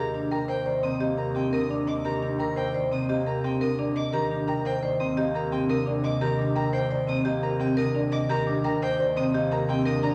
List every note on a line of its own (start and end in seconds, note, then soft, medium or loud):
0.00 4.02 D#2 medium
0.00 0.66 D#3 medium
0.00 0.99 A#3 medium
0.00 0.20 G4 medium
0.00 0.20 A#4 medium
0.00 0.10 A#5 loud
0.14 2.21 G3 medium
0.14 0.37 D4 medium
0.31 0.83 C3 medium
0.31 0.54 A#4 medium
0.31 0.54 G5 medium
0.31 0.45 A#5 medium
0.48 0.72 C5 medium
0.48 0.62 G5 loud
0.66 2.04 D#3 medium
0.66 0.89 C5 medium
0.66 0.89 D5 medium
0.83 1.52 C3 medium
0.83 1.06 C4 medium
0.83 0.96 D#6 medium
1.00 3.08 A#3 medium
1.00 1.24 G4 loud
1.00 1.24 D#5 medium
1.17 1.41 A#4 medium
1.17 1.31 A#5 medium
1.35 1.69 D3 medium
1.35 1.59 C4 medium
1.35 1.58 G4 medium
1.35 1.49 G5 medium
1.53 2.38 C3 medium
1.53 1.76 A#4 loud
1.53 1.66 D#6 medium
1.69 3.43 D3 medium
1.69 1.93 D4 medium
1.69 1.93 D5 medium
1.87 2.10 D#5 medium
1.87 2.00 D6 medium
2.04 2.74 D#3 medium
2.04 2.28 G4 medium
2.04 2.28 A#4 medium
2.04 2.18 A#5 medium
2.22 4.30 G3 medium
2.22 2.45 D4 medium
2.39 2.91 C3 medium
2.39 2.63 A#4 medium
2.39 2.62 G5 medium
2.39 2.53 A#5 medium
2.56 2.80 C5 medium
2.56 2.70 G5 loud
2.74 4.12 D#3 medium
2.74 2.97 C5 medium
2.74 2.97 D5 medium
2.91 3.60 C3 medium
2.91 3.15 C4 medium
2.91 3.05 D#6 medium
3.09 5.16 A#3 medium
3.09 3.32 G4 loud
3.09 3.32 D#5 medium
3.26 3.49 A#4 medium
3.26 3.40 A#5 medium
3.44 3.77 D3 medium
3.44 3.67 C4 medium
3.44 3.67 G4 medium
3.44 3.57 G5 medium
3.61 4.15 C3 loud
3.61 3.84 A#4 loud
3.61 3.74 D#6 medium
3.79 4.15 D3 medium
3.79 4.01 D4 medium
3.79 4.01 D5 medium
3.96 4.19 D#5 medium
3.96 4.09 D6 medium
4.13 8.19 D#2 medium
4.13 4.81 D#3 loud
4.13 4.36 G4 medium
4.13 4.36 A#4 medium
4.13 4.26 A#5 loud
4.31 6.38 G3 medium
4.31 4.53 D4 medium
4.48 4.99 C3 medium
4.48 4.71 A#4 medium
4.48 4.71 G5 medium
4.48 4.61 A#5 medium
4.65 4.88 C5 loud
4.65 4.78 G5 loud
4.82 6.21 D#3 medium
4.82 5.05 C5 medium
4.82 5.06 D5 medium
5.00 5.68 C3 medium
5.00 5.23 C4 medium
5.00 5.13 D#6 medium
5.17 7.25 A#3 medium
5.17 5.40 G4 loud
5.17 5.40 D#5 loud
5.34 5.58 A#4 medium
5.34 5.48 A#5 medium
5.52 5.86 D3 medium
5.52 5.75 C4 medium
5.52 5.75 G4 medium
5.52 5.65 G5 medium
5.69 6.55 C3 loud
5.69 5.92 A#4 loud
5.69 5.82 D#6 loud
5.86 7.60 D3 medium
5.86 6.09 D4 medium
5.86 6.10 D5 medium
6.04 6.27 D#5 medium
6.04 6.17 D6 medium
6.21 6.90 D#3 loud
6.21 6.44 G4 loud
6.21 6.44 A#4 loud
6.21 6.34 A#5 loud
6.39 8.47 G3 medium
6.39 6.62 D4 medium
6.56 7.07 C3 medium
6.56 6.79 A#4 medium
6.56 6.79 G5 medium
6.56 6.69 A#5 medium
6.73 6.96 C5 loud
6.73 6.86 G5 loud
6.91 8.29 D#3 medium
6.91 7.13 C5 medium
6.91 7.14 D5 medium
7.08 7.77 C3 medium
7.08 7.31 C4 medium
7.08 7.21 D#6 medium
7.25 9.33 A#3 loud
7.25 7.48 G4 loud
7.25 7.48 D#5 medium
7.43 7.66 A#4 medium
7.43 7.56 A#5 medium
7.60 7.94 D3 medium
7.60 7.83 C4 medium
7.60 7.83 G4 medium
7.60 7.73 G5 medium
7.77 8.31 C3 loud
7.77 8.00 A#4 loud
7.77 7.90 D#6 loud
7.95 8.31 D3 medium
7.95 8.17 D4 medium
7.95 8.18 D5 medium
8.12 8.35 D#5 medium
8.12 8.25 D6 medium
8.29 10.15 D#2 medium
8.29 8.99 D#3 loud
8.29 8.52 G4 loud
8.29 8.53 A#4 loud
8.29 8.42 A#5 loud
8.47 10.15 G3 medium
8.47 8.70 D4 medium
8.64 9.16 C3 medium
8.64 8.87 A#4 medium
8.64 8.87 G5 medium
8.64 8.77 A#5 medium
8.82 9.05 C5 loud
8.82 8.95 G5 loud
8.99 10.15 D#3 medium
8.99 9.22 C5 medium
8.99 9.22 D5 medium
9.17 9.85 C3 medium
9.17 9.39 C4 medium
9.17 9.30 D#6 medium
9.34 10.15 A#3 loud
9.34 9.57 G4 loud
9.34 9.57 D#5 loud
9.51 9.74 A#4 medium
9.51 9.64 A#5 medium
9.69 10.02 D3 loud
9.69 9.91 C4 medium
9.69 9.91 G4 medium
9.69 9.82 G5 loud
9.85 10.15 C3 loud
9.85 10.08 A#4 loud
9.85 9.99 D#6 loud
10.03 10.15 D3 medium
10.03 10.15 D4 medium
10.03 10.15 D5 medium
10.03 10.15 A#5 medium